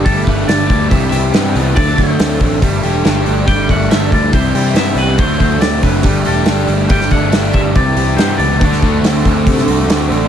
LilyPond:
<<
  \new Staff \with { instrumentName = "Clean electric guitar" } { \time 4/4 \key g \major \tempo 4 = 140 a'8 b'8 d''8 d''8 e''8 e''4 r8 | d''8 c''4 r2 r8 | g''8 fis''8 e''8 d''8 c''4 e''8 b'8 | c''8 c''8 d''8 b'4 a'4 r8 |
g''8 fis''4 e''8 d''4 c''8 d''8~ | d''2. r4 | }
  \new Staff \with { instrumentName = "Distorted electric guitar" } { \time 4/4 \key g \major <g a d' g'>2 <c e g e' g'>2 | <d fis a d' fis'>2 <g a d' g'>2 | <g a d' g'>2 <c e g e' g'>2 | <d fis a d' fis'>2 <g a d' g'>2 |
<g a d' g'>2 <c e g g'>2 | <d a d' fis'>1 | }
  \new Staff \with { instrumentName = "Overdriven electric guitar" } { \time 4/4 \key g \major g8 a8 d'8 g8 c8 g'8 b8 e8 | d8 a8 c'8 d8 g8 g'8 d'8 g8 | g8 a8 d'8 g8 c8 g'8 b8 e8 | d8 a8 c'8 d8 g8 g'8 d'8 g8 |
g8 a8 d'8 g8 c8 g'8 b8 e8 | d8 a8 c'8 d8 a8 fis'8 c'8 d8 | }
  \new Staff \with { instrumentName = "Picked electric bass" } { \clef bass \time 4/4 \key g \major g,,8 g,,8 g,,8 d,8 c,8 c,8 g,8 c,8 | d,8 d,8 d,8 a,,8 g,,8 e,,8 g,,8 g,,8 | g,,8 g,,8 g,,8 d,8 c,8 c,8 g,8 c,8 | d,8 d,8 d,8 fis,,8 g,,8 e,,8 g,,8 g,,8 |
g,,8 g,,8 g,,8 g,,8 c,8 c,8 g,8 cis,8 | d,8 d,8 d,8 d,8 c8 c,8 d,8 a,,8 | }
  \new DrumStaff \with { instrumentName = "Drums" } \drummode { \time 4/4 <hho bd>8 <hho bd>8 <hho sn>8 <hho bd>8 <hho bd>8 hho8 <hho sn>8 hho8 | <hho bd>8 <hho bd>8 <hho sn>8 <hho bd>8 <hho bd>8 hho8 <hho sn>8 hho8 | <hho bd>8 <hho bd>8 <hho sn>8 <hho bd>8 <hho bd>8 hho8 <hho sn>8 hho8 | <hho bd>8 <hho bd>8 <hho sn>8 <hho bd>8 <hho bd>8 hho8 <hho sn>8 hho8 |
<hho bd>16 sn16 <hho bd>8 <hho sn>8 <hho bd>8 <hho bd>8 hho8 <hho sn>8 hho8 | <hho bd>16 sn16 <hho bd>8 <hho sn>8 <hho bd>8 <hho bd>16 sn16 hho8 <hho sn>8 hho8 | }
>>